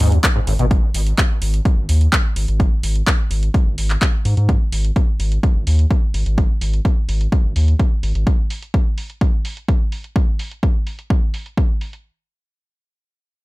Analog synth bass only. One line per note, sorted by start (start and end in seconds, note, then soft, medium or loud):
0.00 0.18 D#2 medium
0.47 0.57 G#1 loud
0.59 0.77 G#1 medium
0.94 1.13 G#1 loud
1.42 1.60 G#1 loud
1.77 1.86 G#1 medium
1.89 2.07 D#2 medium
2.36 2.46 G#1 medium
2.48 2.66 G#1 medium
2.83 3.02 G#1 medium
3.31 3.49 G#1 loud
3.66 3.75 G#1 loud
3.78 3.96 G#1 medium
4.25 4.35 G#2 medium
4.37 4.55 G#2 loud
4.72 4.91 G#1 medium
5.20 5.38 G#1 loud
5.55 5.64 G#1 medium
5.67 5.85 D#2 medium
6.14 6.24 G#1 loud
6.26 6.44 G#1 medium
6.61 6.80 G#1 medium
7.09 7.27 G#1 loud
7.44 7.53 G#1 medium
7.56 7.74 D#2 medium
8.03 8.12 G#1 loud
8.15 8.24 G#1 medium